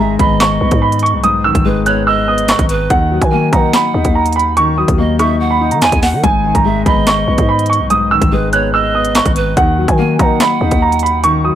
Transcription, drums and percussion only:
0.19 kick loud
0.19 closed hi-hat medium
0.40 snare loud
0.40 clap loud
0.40 closed hi-hat medium
0.71 kick loud
0.71 closed hi-hat medium
0.92 closed hi-hat medium
0.99 closed hi-hat medium
1.06 closed hi-hat medium
1.24 closed hi-hat medium
1.55 kick medium
1.55 closed hi-hat medium
1.86 closed hi-hat medium
2.38 closed hi-hat medium
2.48 snare loud
2.48 clap loud
2.48 closed hi-hat medium
2.59 kick loud
2.59 cross-stick medium
2.59 closed hi-hat medium
2.69 closed hi-hat medium
2.90 kick loud
2.90 closed hi-hat medium
3.22 kick loud
3.22 closed hi-hat medium
3.53 kick loud
3.53 closed hi-hat medium
3.73 snare loud
3.73 clap loud
3.73 closed hi-hat medium
4.05 kick medium
4.05 closed hi-hat medium
4.26 closed hi-hat medium
4.33 closed hi-hat medium
4.39 closed hi-hat medium
4.57 closed hi-hat medium
4.88 kick loud
4.88 closed hi-hat medium
5.19 cross-stick loud
5.19 closed hi-hat medium
5.71 closed hi-hat medium
5.82 snare loud
5.82 clap loud
5.82 closed hi-hat medium
5.92 kick medium
5.92 closed hi-hat medium
6.02 snare medium
6.02 open hi-hat medium
6.24 kick loud
6.24 closed hi-hat medium
6.55 kick loud
6.55 closed hi-hat medium
6.86 kick loud
6.86 closed hi-hat medium
7.07 snare loud
7.07 clap loud
7.07 closed hi-hat medium
7.38 kick medium
7.38 closed hi-hat medium
7.59 closed hi-hat medium
7.66 closed hi-hat medium
7.73 closed hi-hat medium
7.90 closed hi-hat medium
8.22 kick medium
8.22 closed hi-hat medium
8.53 closed hi-hat medium
9.05 closed hi-hat medium
9.15 snare loud
9.15 clap loud
9.15 closed hi-hat medium
9.26 kick medium
9.26 cross-stick medium
9.26 closed hi-hat medium
9.36 closed hi-hat medium
9.57 kick loud
9.57 closed hi-hat medium
9.88 kick medium
9.88 closed hi-hat medium
10.19 kick loud
10.19 closed hi-hat medium
10.40 snare loud
10.40 clap loud
10.40 closed hi-hat medium
10.71 kick loud
10.71 closed hi-hat medium
10.92 closed hi-hat medium
10.99 closed hi-hat medium
11.06 closed hi-hat medium
11.24 closed hi-hat medium

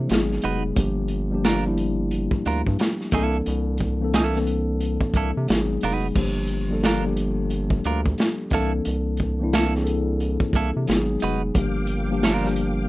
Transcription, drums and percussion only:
0.09 snare loud
0.09 closed hi-hat medium
0.32 snare soft
0.42 closed hi-hat medium
0.76 kick loud
0.76 closed hi-hat medium
1.08 closed hi-hat medium
1.45 snare loud
1.45 closed hi-hat medium
1.77 closed hi-hat medium
2.11 closed hi-hat medium
2.31 kick medium
2.45 closed hi-hat medium
2.67 kick medium
2.79 snare loud
2.79 closed hi-hat medium
3.01 snare soft
3.11 kick medium
3.11 closed hi-hat medium
3.46 closed hi-hat medium
3.78 kick medium
3.78 closed hi-hat medium
4.14 snare loud
4.14 closed hi-hat medium
4.36 snare soft
4.47 closed hi-hat medium
4.80 closed hi-hat medium
5.01 kick medium
5.14 kick medium
5.14 closed hi-hat medium
5.48 snare loud
5.48 closed hi-hat medium
5.81 open hi-hat soft
6.15 kick loud
6.15 crash medium
6.47 closed hi-hat medium
6.83 snare loud
6.83 closed hi-hat medium
7.17 closed hi-hat medium
7.50 closed hi-hat medium
7.70 kick medium
7.84 closed hi-hat medium
8.06 kick medium
8.18 snare loud
8.18 closed hi-hat medium
8.50 kick medium
8.50 closed hi-hat medium
8.85 closed hi-hat medium
9.17 kick medium
9.17 closed hi-hat medium
9.53 snare loud
9.53 closed hi-hat medium
9.75 snare soft
9.87 closed hi-hat medium
10.20 closed hi-hat medium
10.40 kick medium
10.53 kick medium
10.53 closed hi-hat medium
10.87 snare loud
10.87 closed hi-hat medium
11.20 closed hi-hat medium
11.55 kick loud
11.55 closed hi-hat medium
11.87 closed hi-hat medium
12.23 snare loud
12.23 closed hi-hat medium
12.45 snare soft
12.56 closed hi-hat medium

